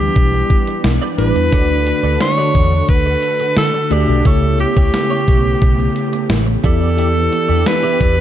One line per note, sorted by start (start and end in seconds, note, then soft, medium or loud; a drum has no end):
0.00 1.49 E3 medium
0.00 1.54 E3 medium
0.00 1.18 G3 medium
0.00 1.49 G3 medium
0.00 1.49 B3 medium
0.00 1.18 D4 medium
0.00 4.21 D4 medium
0.00 1.18 E4 medium
0.00 0.88 G4 loud
0.00 1.19 B4 medium
0.16 0.42 B1 medium
0.16 muted clean electric guitar stroke soft
0.16 kick medium
0.16 closed hi-hat medium
0.34 muted clean electric guitar stroke soft
0.50 kick medium
0.50 closed hi-hat medium
0.67 muted clean electric guitar stroke soft
0.67 closed hi-hat medium
0.84 0.97 B1 medium
0.84 muted clean electric guitar stroke soft
0.84 snare loud
0.84 closed hi-hat medium
1.02 1.17 G4 medium
1.02 1.18 B4 medium
1.02 1.19 D5 medium
1.18 1.31 A1 medium
1.18 1.42 G3 medium
1.18 1.42 D4 medium
1.18 1.42 E4 medium
1.18 1.33 G4 medium
1.18 2.17 B4 medium
1.18 1.42 B4 medium
1.18 1.34 B4 medium
1.18 1.34 D5 medium
1.18 closed hi-hat medium
1.35 1.48 E2 medium
1.35 muted clean electric guitar stroke soft
1.35 closed hi-hat soft
1.52 1.91 D2 medium
1.52 4.22 D3 medium
1.52 2.51 D3 medium
1.52 2.47 A3 medium
1.52 2.47 D4 medium
1.52 2.48 F#4 medium
1.52 1.72 F#4 medium
1.52 4.22 A4 medium
1.52 1.70 A4 medium
1.52 1.59 C#5 medium
1.52 1.69 D5 medium
1.52 4.22 F#5 medium
1.52 kick loud
1.52 closed hi-hat medium
1.59 2.51 D5 medium
1.70 muted clean electric guitar stroke medium
1.87 muted clean electric guitar stroke soft
1.87 closed hi-hat medium
2.04 2.16 D2 medium
2.04 2.19 F#4 soft
2.04 2.19 A4 soft
2.04 2.19 D5 medium
2.21 2.85 C#5 loud
2.21 muted clean electric guitar stroke soft
2.21 snare medium
2.21 closed hi-hat medium
2.38 2.54 F#4 medium
2.38 2.54 A4 medium
2.38 2.55 D5 medium
2.55 2.81 E2 medium
2.55 2.70 F#4 medium
2.55 2.70 A4 medium
2.55 2.70 D5 medium
2.55 kick medium
2.55 closed hi-hat medium
2.72 muted clean electric guitar stroke soft
2.88 3.15 D2 medium
2.88 3.53 B4 medium
2.88 muted clean electric guitar stroke soft
2.88 kick medium
2.88 closed hi-hat medium
3.06 muted clean electric guitar stroke soft
3.23 closed hi-hat medium
3.40 muted clean electric guitar stroke soft
3.40 closed hi-hat medium
3.57 3.70 D3 medium
3.57 3.93 A4 medium
3.57 muted clean electric guitar stroke soft
3.57 snare loud
3.57 closed hi-hat medium
3.74 muted clean electric guitar stroke medium
3.90 4.04 D2 medium
3.90 4.15 A3 medium
3.90 4.15 D4 medium
3.90 4.15 F#4 medium
3.90 4.08 F#4 medium
3.90 4.27 G4 medium
3.90 4.08 A4 medium
3.90 4.15 D5 medium
3.90 4.07 D5 medium
3.90 closed hi-hat medium
4.08 4.21 B1 medium
4.08 4.24 F#4 soft
4.08 4.23 A4 medium
4.08 4.23 D5 medium
4.25 4.64 C#2 loud
4.25 6.61 C#3 medium
4.25 5.24 C#3 medium
4.25 5.20 A3 medium
4.25 6.61 A3 medium
4.25 6.62 B3 medium
4.25 4.44 E4 medium
4.25 5.21 E4 medium
4.25 6.61 G4 medium
4.25 4.42 G4 medium
4.25 5.21 G4 medium
4.25 4.59 A4 medium
4.25 5.21 C#5 medium
4.25 4.41 C#5 medium
4.25 kick loud
4.25 closed hi-hat medium
4.42 muted clean electric guitar stroke soft
4.59 6.33 G4 medium
4.59 muted clean electric guitar stroke soft
4.59 closed hi-hat medium
4.76 4.89 C#2 medium
4.76 4.92 E4 soft
4.76 4.92 G4 medium
4.76 4.91 C#5 medium
4.76 kick medium
4.94 muted clean electric guitar stroke soft
4.94 snare medium
4.94 closed hi-hat medium
5.10 5.26 E4 medium
5.10 5.27 G4 medium
5.10 5.27 C#5 medium
5.27 5.53 B1 medium
5.27 5.42 E4 medium
5.27 5.43 G4 medium
5.27 5.43 C#5 medium
5.27 kick medium
5.27 closed hi-hat medium
5.44 muted clean electric guitar stroke soft
5.62 5.87 B1 medium
5.62 muted clean electric guitar stroke soft
5.62 kick medium
5.62 closed hi-hat medium
5.79 muted clean electric guitar stroke soft
5.96 closed hi-hat medium
6.13 muted clean electric guitar stroke soft
6.13 closed hi-hat medium
6.30 6.55 A1 medium
6.30 muted clean electric guitar stroke soft
6.30 snare loud
6.30 closed hi-hat medium
6.47 muted clean electric guitar stroke soft
6.63 7.28 E2 medium
6.63 8.21 E3 medium
6.63 7.62 E3 medium
6.63 8.21 B3 medium
6.63 7.73 B3 medium
6.63 8.21 D4 medium
6.63 6.81 E4 medium
6.63 7.73 E4 medium
6.63 8.21 G4 medium
6.63 6.80 G4 medium
6.63 7.73 G4 medium
6.63 7.69 A4 medium
6.63 7.74 D5 medium
6.63 6.80 D5 medium
6.63 kick loud
6.63 closed hi-hat medium
6.81 6.96 E4 soft
6.81 6.96 G4 soft
6.81 6.96 D5 medium
6.98 7.17 E4 medium
6.98 7.15 G4 medium
6.98 7.14 D5 medium
6.98 closed hi-hat medium
7.15 muted clean electric guitar stroke soft
7.32 muted clean electric guitar stroke soft
7.32 closed hi-hat medium
7.49 7.62 E2 medium
7.49 7.65 E4 soft
7.49 7.64 G4 medium
7.49 7.64 D5 medium
7.66 8.21 B4 medium
7.66 snare medium
7.66 closed hi-hat medium
7.83 7.99 E4 medium
7.83 8.00 G4 medium
7.83 8.00 D5 medium
8.00 8.21 E2 medium
8.00 8.15 E4 medium
8.00 8.16 G4 medium
8.00 8.16 D5 medium
8.00 kick medium
8.00 closed hi-hat medium
8.17 muted clean electric guitar stroke soft